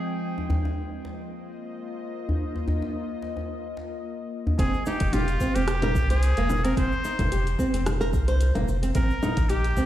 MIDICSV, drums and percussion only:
0, 0, Header, 1, 3, 480
1, 0, Start_track
1, 0, Tempo, 545455
1, 198, Time_signature, 4, 2, 24, 8
1, 8674, End_track
2, 0, Start_track
2, 0, Title_t, "Djembe"
2, 333, Note_on_c, 9, 63, 61
2, 421, Note_off_c, 9, 63, 0
2, 437, Note_on_c, 9, 64, 89
2, 441, Note_on_c, 9, 62, 45
2, 525, Note_off_c, 9, 64, 0
2, 529, Note_off_c, 9, 62, 0
2, 574, Note_on_c, 9, 63, 75
2, 662, Note_off_c, 9, 63, 0
2, 923, Note_on_c, 9, 62, 46
2, 1011, Note_off_c, 9, 62, 0
2, 2013, Note_on_c, 9, 64, 78
2, 2101, Note_off_c, 9, 64, 0
2, 2250, Note_on_c, 9, 63, 63
2, 2338, Note_off_c, 9, 63, 0
2, 2355, Note_on_c, 9, 64, 82
2, 2360, Note_on_c, 9, 62, 40
2, 2443, Note_off_c, 9, 64, 0
2, 2448, Note_off_c, 9, 62, 0
2, 2484, Note_on_c, 9, 63, 69
2, 2572, Note_off_c, 9, 63, 0
2, 2837, Note_on_c, 9, 62, 48
2, 2925, Note_off_c, 9, 62, 0
2, 2962, Note_on_c, 9, 63, 54
2, 3050, Note_off_c, 9, 63, 0
2, 3317, Note_on_c, 9, 62, 45
2, 3405, Note_off_c, 9, 62, 0
2, 3931, Note_on_c, 9, 64, 77
2, 4019, Note_off_c, 9, 64, 0
2, 8674, End_track
3, 0, Start_track
3, 0, Title_t, "Drums"
3, 4037, Note_on_c, 9, 36, 114
3, 4039, Note_on_c, 9, 42, 60
3, 4041, Note_on_c, 9, 69, 42
3, 4125, Note_off_c, 9, 36, 0
3, 4127, Note_off_c, 9, 42, 0
3, 4129, Note_off_c, 9, 69, 0
3, 4169, Note_on_c, 9, 69, 24
3, 4257, Note_off_c, 9, 69, 0
3, 4277, Note_on_c, 9, 69, 68
3, 4365, Note_off_c, 9, 69, 0
3, 4402, Note_on_c, 9, 42, 46
3, 4403, Note_on_c, 9, 69, 33
3, 4407, Note_on_c, 9, 36, 106
3, 4490, Note_off_c, 9, 42, 0
3, 4491, Note_off_c, 9, 69, 0
3, 4495, Note_off_c, 9, 36, 0
3, 4514, Note_on_c, 9, 42, 61
3, 4514, Note_on_c, 9, 64, 78
3, 4516, Note_on_c, 9, 69, 44
3, 4602, Note_off_c, 9, 42, 0
3, 4602, Note_off_c, 9, 64, 0
3, 4604, Note_off_c, 9, 69, 0
3, 4646, Note_on_c, 9, 42, 31
3, 4648, Note_on_c, 9, 69, 22
3, 4734, Note_off_c, 9, 42, 0
3, 4736, Note_off_c, 9, 69, 0
3, 4757, Note_on_c, 9, 36, 63
3, 4757, Note_on_c, 9, 69, 81
3, 4845, Note_off_c, 9, 36, 0
3, 4845, Note_off_c, 9, 69, 0
3, 4889, Note_on_c, 9, 42, 47
3, 4890, Note_on_c, 9, 69, 34
3, 4977, Note_off_c, 9, 42, 0
3, 4978, Note_off_c, 9, 69, 0
3, 4995, Note_on_c, 9, 37, 79
3, 4995, Note_on_c, 9, 42, 55
3, 4996, Note_on_c, 9, 69, 45
3, 5083, Note_off_c, 9, 37, 0
3, 5083, Note_off_c, 9, 42, 0
3, 5084, Note_off_c, 9, 69, 0
3, 5124, Note_on_c, 9, 42, 35
3, 5124, Note_on_c, 9, 64, 86
3, 5126, Note_on_c, 9, 69, 23
3, 5212, Note_off_c, 9, 42, 0
3, 5212, Note_off_c, 9, 64, 0
3, 5214, Note_off_c, 9, 69, 0
3, 5238, Note_on_c, 9, 36, 101
3, 5240, Note_on_c, 9, 69, 83
3, 5326, Note_off_c, 9, 36, 0
3, 5328, Note_off_c, 9, 69, 0
3, 5369, Note_on_c, 9, 42, 49
3, 5370, Note_on_c, 9, 69, 34
3, 5457, Note_off_c, 9, 42, 0
3, 5458, Note_off_c, 9, 69, 0
3, 5479, Note_on_c, 9, 42, 62
3, 5481, Note_on_c, 9, 69, 46
3, 5567, Note_off_c, 9, 42, 0
3, 5569, Note_off_c, 9, 69, 0
3, 5606, Note_on_c, 9, 42, 33
3, 5607, Note_on_c, 9, 69, 23
3, 5694, Note_off_c, 9, 42, 0
3, 5695, Note_off_c, 9, 69, 0
3, 5717, Note_on_c, 9, 64, 74
3, 5718, Note_on_c, 9, 69, 78
3, 5805, Note_off_c, 9, 64, 0
3, 5806, Note_off_c, 9, 69, 0
3, 5848, Note_on_c, 9, 42, 45
3, 5850, Note_on_c, 9, 69, 33
3, 5936, Note_off_c, 9, 42, 0
3, 5938, Note_off_c, 9, 69, 0
3, 5958, Note_on_c, 9, 36, 120
3, 5960, Note_on_c, 9, 42, 59
3, 5962, Note_on_c, 9, 69, 46
3, 6046, Note_off_c, 9, 36, 0
3, 6048, Note_off_c, 9, 42, 0
3, 6050, Note_off_c, 9, 69, 0
3, 6091, Note_on_c, 9, 69, 22
3, 6179, Note_off_c, 9, 69, 0
3, 6200, Note_on_c, 9, 69, 70
3, 6288, Note_off_c, 9, 69, 0
3, 6328, Note_on_c, 9, 36, 108
3, 6328, Note_on_c, 9, 42, 44
3, 6328, Note_on_c, 9, 64, 74
3, 6329, Note_on_c, 9, 69, 33
3, 6416, Note_off_c, 9, 36, 0
3, 6416, Note_off_c, 9, 42, 0
3, 6416, Note_off_c, 9, 64, 0
3, 6417, Note_off_c, 9, 69, 0
3, 6441, Note_on_c, 9, 42, 62
3, 6442, Note_on_c, 9, 69, 49
3, 6529, Note_off_c, 9, 42, 0
3, 6530, Note_off_c, 9, 69, 0
3, 6574, Note_on_c, 9, 42, 30
3, 6575, Note_on_c, 9, 69, 22
3, 6662, Note_off_c, 9, 42, 0
3, 6663, Note_off_c, 9, 69, 0
3, 6678, Note_on_c, 9, 36, 68
3, 6684, Note_on_c, 9, 69, 84
3, 6766, Note_off_c, 9, 36, 0
3, 6772, Note_off_c, 9, 69, 0
3, 6811, Note_on_c, 9, 42, 47
3, 6813, Note_on_c, 9, 69, 35
3, 6899, Note_off_c, 9, 42, 0
3, 6901, Note_off_c, 9, 69, 0
3, 6920, Note_on_c, 9, 37, 81
3, 6920, Note_on_c, 9, 42, 61
3, 6920, Note_on_c, 9, 64, 75
3, 6922, Note_on_c, 9, 69, 46
3, 7008, Note_off_c, 9, 37, 0
3, 7008, Note_off_c, 9, 42, 0
3, 7008, Note_off_c, 9, 64, 0
3, 7010, Note_off_c, 9, 69, 0
3, 7052, Note_on_c, 9, 42, 32
3, 7054, Note_on_c, 9, 69, 25
3, 7140, Note_off_c, 9, 42, 0
3, 7142, Note_off_c, 9, 69, 0
3, 7158, Note_on_c, 9, 36, 105
3, 7159, Note_on_c, 9, 69, 78
3, 7246, Note_off_c, 9, 36, 0
3, 7247, Note_off_c, 9, 69, 0
3, 7286, Note_on_c, 9, 42, 42
3, 7288, Note_on_c, 9, 69, 35
3, 7374, Note_off_c, 9, 42, 0
3, 7376, Note_off_c, 9, 69, 0
3, 7397, Note_on_c, 9, 42, 56
3, 7398, Note_on_c, 9, 69, 44
3, 7485, Note_off_c, 9, 42, 0
3, 7486, Note_off_c, 9, 69, 0
3, 7528, Note_on_c, 9, 36, 65
3, 7528, Note_on_c, 9, 42, 31
3, 7528, Note_on_c, 9, 64, 76
3, 7530, Note_on_c, 9, 69, 23
3, 7616, Note_off_c, 9, 36, 0
3, 7616, Note_off_c, 9, 42, 0
3, 7616, Note_off_c, 9, 64, 0
3, 7618, Note_off_c, 9, 69, 0
3, 7640, Note_on_c, 9, 69, 77
3, 7728, Note_off_c, 9, 69, 0
3, 7770, Note_on_c, 9, 42, 43
3, 7771, Note_on_c, 9, 69, 36
3, 7858, Note_off_c, 9, 42, 0
3, 7859, Note_off_c, 9, 69, 0
3, 7874, Note_on_c, 9, 42, 53
3, 7875, Note_on_c, 9, 69, 49
3, 7878, Note_on_c, 9, 36, 121
3, 7962, Note_off_c, 9, 42, 0
3, 7963, Note_off_c, 9, 69, 0
3, 7966, Note_off_c, 9, 36, 0
3, 8010, Note_on_c, 9, 69, 25
3, 8098, Note_off_c, 9, 69, 0
3, 8120, Note_on_c, 9, 64, 75
3, 8121, Note_on_c, 9, 69, 74
3, 8208, Note_off_c, 9, 64, 0
3, 8209, Note_off_c, 9, 69, 0
3, 8245, Note_on_c, 9, 42, 42
3, 8247, Note_on_c, 9, 69, 34
3, 8248, Note_on_c, 9, 36, 114
3, 8333, Note_off_c, 9, 42, 0
3, 8335, Note_off_c, 9, 69, 0
3, 8336, Note_off_c, 9, 36, 0
3, 8355, Note_on_c, 9, 42, 54
3, 8356, Note_on_c, 9, 69, 49
3, 8443, Note_off_c, 9, 42, 0
3, 8444, Note_off_c, 9, 69, 0
3, 8487, Note_on_c, 9, 42, 28
3, 8489, Note_on_c, 9, 69, 22
3, 8575, Note_off_c, 9, 42, 0
3, 8577, Note_off_c, 9, 69, 0
3, 8598, Note_on_c, 9, 36, 67
3, 8598, Note_on_c, 9, 69, 80
3, 8674, Note_off_c, 9, 36, 0
3, 8674, Note_off_c, 9, 69, 0
3, 8674, End_track
0, 0, End_of_file